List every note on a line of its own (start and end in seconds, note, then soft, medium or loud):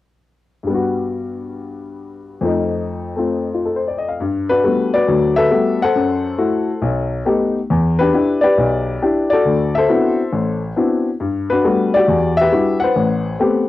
0.63 2.42 G2 soft
0.63 2.43 G3 soft
0.70 2.45 B3 soft
0.74 2.47 F#4 medium
2.41 4.18 F2 medium
2.41 4.19 F3 soft
2.41 3.15 A3 soft
2.45 4.20 D#4 medium
3.16 4.19 A3 soft
3.16 4.20 C4 soft
3.16 3.53 F4 soft
3.54 3.67 F4 soft
3.65 3.80 A4 soft
3.76 3.97 C5 soft
3.88 4.06 D5 soft
3.98 4.11 D#5 soft
4.08 4.24 F5 soft
4.20 4.58 G2 medium
4.49 5.33 D4 medium
4.49 4.63 F#4 medium
4.49 4.90 B4 medium
4.64 4.95 G3 medium
4.64 4.95 A3 soft
4.64 4.95 B3 soft
4.64 4.93 F#4 medium
4.94 5.49 F#4 medium
4.94 5.36 B4 medium
4.94 5.34 D5 medium
5.07 5.45 D2 medium
5.07 5.45 F#3 medium
5.36 5.82 A4 medium
5.36 5.91 B4 medium
5.36 5.82 E5 medium
5.50 5.82 G3 soft
5.50 5.82 A3 soft
5.50 5.82 B3 soft
5.50 5.82 F#4 medium
5.82 7.10 A4 medium
5.82 6.80 C5 medium
5.82 7.09 F#5 loud
5.95 6.33 F#2 medium
6.38 6.69 A3 medium
6.38 6.70 E4 soft
6.38 6.70 F#4 medium
6.82 7.20 B1 medium
7.25 7.57 A3 medium
7.25 7.57 B3 soft
7.25 7.57 D#4 soft
7.25 7.57 G4 medium
7.70 8.08 E2 medium
7.99 8.12 D4 medium
7.99 8.13 G4 medium
7.99 8.42 B4 medium
8.14 8.45 D4 medium
8.14 8.45 E4 soft
8.14 8.42 G4 medium
8.41 9.01 G4 medium
8.41 9.27 B4 medium
8.41 9.28 D5 medium
8.58 8.96 B1 medium
9.02 9.33 D4 soft
9.02 9.33 E4 soft
9.02 9.33 G4 medium
9.30 9.88 F#4 medium
9.30 9.76 A4 medium
9.30 9.76 D5 medium
9.45 9.83 D2 medium
9.75 10.60 A4 medium
9.75 10.61 C5 medium
9.75 10.29 E5 medium
9.88 10.20 B3 medium
9.88 10.20 C4 soft
9.88 10.20 D4 soft
9.88 10.20 E4 soft
9.88 10.20 F#4 medium
10.33 10.71 A1 medium
10.76 11.08 B3 soft
10.76 11.08 C4 soft
10.76 11.08 D4 soft
10.76 11.08 E4 soft
10.76 11.08 F#4 soft
11.20 11.59 G2 medium
11.50 12.05 D4 medium
11.50 11.63 F#4 medium
11.50 11.95 B4 medium
11.65 11.96 G3 medium
11.65 11.96 A3 medium
11.65 11.96 B3 soft
11.65 11.96 F#4 medium
11.94 12.51 F#4 medium
11.94 12.40 G4 medium
11.94 12.35 D5 loud
12.08 12.46 E2 medium
12.37 12.83 E5 loud
12.41 12.94 G4 medium
12.41 12.83 B4 medium
12.52 12.83 G3 soft
12.52 12.84 D4 soft
12.52 12.84 E4 soft
12.52 12.84 F#4 medium
12.80 13.69 C5 medium
12.80 13.69 F#5 medium
12.84 13.69 B4 medium
12.96 13.34 A1 medium
13.39 13.69 A3 medium
13.39 13.69 B3 soft
13.39 13.69 C4 soft
13.39 13.69 G4 medium